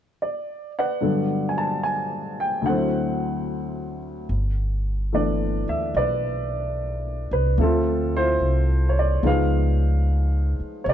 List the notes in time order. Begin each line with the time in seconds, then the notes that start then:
0.22 D5
0.79 B4 D5 F#5
1.01 G2 D3 F#3 B3 A4
1.49 G#5
1.58 A5
1.83 G#5
2.40 G5
2.61 D2 D3
2.66 F#3 C4 A4 C5 F#5
2.72 E4
4.29 G1
5.12 E3 A3 B3 D4 D5
5.68 D2 E5
5.94 B1 B4 D5
7.31 C2 B4
7.58 D2 F3 A3 C4 A4 E5
7.63 C4 F4
8.17 E4 F4 C5
8.40 C2
8.89 C#5
8.99 D5
9.23 C#2 F3 G#3 B3 D#4 F5
9.27 G#4 B4
10.59 muted upright bass stroke
10.84 C2 C#5
10.89 D5